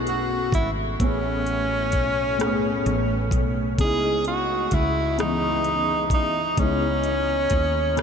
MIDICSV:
0, 0, Header, 1, 5, 480
1, 0, Start_track
1, 0, Key_signature, 4, "minor"
1, 0, Tempo, 930233
1, 513, Time_signature, 6, 3, 24, 8
1, 4141, End_track
2, 0, Start_track
2, 0, Title_t, "Tenor saxophone"
2, 0, Program_c, 0, 66
2, 45, Note_on_c, 0, 66, 74
2, 263, Note_off_c, 0, 66, 0
2, 282, Note_on_c, 0, 64, 80
2, 364, Note_off_c, 0, 64, 0
2, 519, Note_on_c, 0, 61, 82
2, 1695, Note_off_c, 0, 61, 0
2, 1965, Note_on_c, 0, 68, 97
2, 2183, Note_off_c, 0, 68, 0
2, 2207, Note_on_c, 0, 66, 77
2, 2446, Note_on_c, 0, 64, 93
2, 2453, Note_off_c, 0, 66, 0
2, 2679, Note_off_c, 0, 64, 0
2, 2684, Note_on_c, 0, 63, 85
2, 3138, Note_off_c, 0, 63, 0
2, 3170, Note_on_c, 0, 63, 80
2, 3406, Note_on_c, 0, 61, 80
2, 3414, Note_off_c, 0, 63, 0
2, 4141, Note_off_c, 0, 61, 0
2, 4141, End_track
3, 0, Start_track
3, 0, Title_t, "Grand piano"
3, 0, Program_c, 1, 0
3, 0, Control_c, 1, 64, 127
3, 0, Note_on_c, 1, 47, 57
3, 0, Note_on_c, 1, 57, 50
3, 0, Note_on_c, 1, 61, 50
3, 0, Note_on_c, 1, 64, 50
3, 0, Note_on_c, 1, 71, 62
3, 263, Note_off_c, 1, 47, 0
3, 266, Note_off_c, 1, 57, 0
3, 269, Note_off_c, 1, 61, 0
3, 272, Note_off_c, 1, 64, 0
3, 275, Note_off_c, 1, 71, 0
3, 513, Note_on_c, 1, 45, 59
3, 521, Control_c, 1, 64, 0
3, 521, Note_on_c, 1, 57, 61
3, 524, Note_on_c, 1, 59, 53
3, 533, Note_on_c, 1, 61, 59
3, 537, Note_on_c, 1, 68, 69
3, 604, Control_c, 1, 64, 127
3, 984, Note_off_c, 1, 45, 0
3, 988, Note_off_c, 1, 57, 0
3, 989, Note_off_c, 1, 59, 0
3, 994, Note_off_c, 1, 61, 0
3, 996, Note_off_c, 1, 68, 0
3, 1228, Note_on_c, 1, 45, 71
3, 1237, Note_on_c, 1, 57, 66
3, 1241, Note_on_c, 1, 59, 70
3, 1247, Note_on_c, 1, 61, 64
3, 1253, Note_on_c, 1, 68, 80
3, 1701, Note_off_c, 1, 45, 0
3, 1706, Note_off_c, 1, 57, 0
3, 1708, Note_off_c, 1, 59, 0
3, 1711, Note_off_c, 1, 61, 0
3, 1714, Note_off_c, 1, 68, 0
3, 1955, Note_on_c, 1, 49, 60
3, 1959, Control_c, 1, 64, 0
3, 1961, Note_on_c, 1, 56, 51
3, 1966, Note_on_c, 1, 59, 51
3, 1972, Note_on_c, 1, 63, 62
3, 1977, Note_on_c, 1, 64, 62
3, 2048, Control_c, 1, 64, 127
3, 2425, Note_off_c, 1, 49, 0
3, 2428, Note_off_c, 1, 56, 0
3, 2430, Note_off_c, 1, 59, 0
3, 2433, Note_off_c, 1, 63, 0
3, 2436, Note_off_c, 1, 64, 0
3, 2673, Note_on_c, 1, 49, 66
3, 2677, Note_on_c, 1, 56, 59
3, 2681, Note_on_c, 1, 59, 55
3, 2687, Note_on_c, 1, 63, 55
3, 2694, Note_on_c, 1, 52, 66
3, 3144, Note_off_c, 1, 49, 0
3, 3146, Note_off_c, 1, 56, 0
3, 3148, Note_off_c, 1, 59, 0
3, 3151, Note_off_c, 1, 63, 0
3, 3154, Note_off_c, 1, 52, 0
3, 3392, Note_on_c, 1, 49, 59
3, 3399, Note_on_c, 1, 56, 57
3, 3400, Control_c, 1, 64, 0
3, 3404, Note_on_c, 1, 59, 57
3, 3409, Note_on_c, 1, 63, 54
3, 3416, Note_on_c, 1, 64, 71
3, 3484, Control_c, 1, 64, 127
3, 3863, Note_off_c, 1, 49, 0
3, 3867, Note_off_c, 1, 56, 0
3, 3869, Note_off_c, 1, 59, 0
3, 3872, Note_off_c, 1, 63, 0
3, 3875, Note_off_c, 1, 64, 0
3, 4109, Note_on_c, 1, 49, 70
3, 4117, Note_on_c, 1, 56, 65
3, 4123, Note_on_c, 1, 59, 65
3, 4141, Note_off_c, 1, 49, 0
3, 4141, Note_off_c, 1, 56, 0
3, 4141, Note_off_c, 1, 59, 0
3, 4141, End_track
4, 0, Start_track
4, 0, Title_t, "Fretless electric bass"
4, 0, Program_c, 2, 35
4, 0, Note_on_c, 2, 35, 78
4, 257, Note_off_c, 2, 35, 0
4, 273, Note_on_c, 2, 32, 73
4, 492, Note_off_c, 2, 32, 0
4, 520, Note_on_c, 2, 33, 80
4, 1000, Note_off_c, 2, 33, 0
4, 1000, Note_on_c, 2, 35, 82
4, 1456, Note_off_c, 2, 35, 0
4, 1476, Note_on_c, 2, 33, 84
4, 1712, Note_off_c, 2, 33, 0
4, 1712, Note_on_c, 2, 35, 72
4, 1958, Note_off_c, 2, 35, 0
4, 1958, Note_on_c, 2, 37, 84
4, 2415, Note_off_c, 2, 37, 0
4, 2441, Note_on_c, 2, 37, 74
4, 3149, Note_off_c, 2, 37, 0
4, 3149, Note_on_c, 2, 35, 72
4, 3371, Note_off_c, 2, 35, 0
4, 3395, Note_on_c, 2, 37, 84
4, 3854, Note_off_c, 2, 37, 0
4, 3878, Note_on_c, 2, 39, 84
4, 4141, Note_off_c, 2, 39, 0
4, 4141, End_track
5, 0, Start_track
5, 0, Title_t, "Drums"
5, 35, Note_on_c, 9, 42, 49
5, 87, Note_off_c, 9, 42, 0
5, 271, Note_on_c, 9, 36, 83
5, 277, Note_on_c, 9, 42, 64
5, 322, Note_off_c, 9, 36, 0
5, 329, Note_off_c, 9, 42, 0
5, 516, Note_on_c, 9, 36, 100
5, 516, Note_on_c, 9, 42, 75
5, 567, Note_off_c, 9, 36, 0
5, 568, Note_off_c, 9, 42, 0
5, 756, Note_on_c, 9, 42, 45
5, 807, Note_off_c, 9, 42, 0
5, 991, Note_on_c, 9, 42, 56
5, 996, Note_on_c, 9, 36, 59
5, 1042, Note_off_c, 9, 42, 0
5, 1048, Note_off_c, 9, 36, 0
5, 1237, Note_on_c, 9, 42, 53
5, 1245, Note_on_c, 9, 37, 83
5, 1289, Note_off_c, 9, 42, 0
5, 1296, Note_off_c, 9, 37, 0
5, 1477, Note_on_c, 9, 42, 49
5, 1528, Note_off_c, 9, 42, 0
5, 1709, Note_on_c, 9, 36, 81
5, 1714, Note_on_c, 9, 42, 69
5, 1761, Note_off_c, 9, 36, 0
5, 1766, Note_off_c, 9, 42, 0
5, 1953, Note_on_c, 9, 36, 99
5, 1953, Note_on_c, 9, 42, 66
5, 2005, Note_off_c, 9, 36, 0
5, 2005, Note_off_c, 9, 42, 0
5, 2191, Note_on_c, 9, 42, 44
5, 2242, Note_off_c, 9, 42, 0
5, 2431, Note_on_c, 9, 42, 57
5, 2435, Note_on_c, 9, 36, 70
5, 2483, Note_off_c, 9, 42, 0
5, 2487, Note_off_c, 9, 36, 0
5, 2676, Note_on_c, 9, 42, 52
5, 2684, Note_on_c, 9, 37, 94
5, 2728, Note_off_c, 9, 42, 0
5, 2735, Note_off_c, 9, 37, 0
5, 2913, Note_on_c, 9, 42, 43
5, 2964, Note_off_c, 9, 42, 0
5, 3148, Note_on_c, 9, 36, 84
5, 3152, Note_on_c, 9, 42, 63
5, 3200, Note_off_c, 9, 36, 0
5, 3204, Note_off_c, 9, 42, 0
5, 3392, Note_on_c, 9, 42, 71
5, 3393, Note_on_c, 9, 36, 102
5, 3444, Note_off_c, 9, 42, 0
5, 3445, Note_off_c, 9, 36, 0
5, 3630, Note_on_c, 9, 42, 47
5, 3682, Note_off_c, 9, 42, 0
5, 3868, Note_on_c, 9, 42, 60
5, 3874, Note_on_c, 9, 36, 65
5, 3920, Note_off_c, 9, 42, 0
5, 3926, Note_off_c, 9, 36, 0
5, 4114, Note_on_c, 9, 42, 54
5, 4122, Note_on_c, 9, 37, 94
5, 4141, Note_off_c, 9, 37, 0
5, 4141, Note_off_c, 9, 42, 0
5, 4141, End_track
0, 0, End_of_file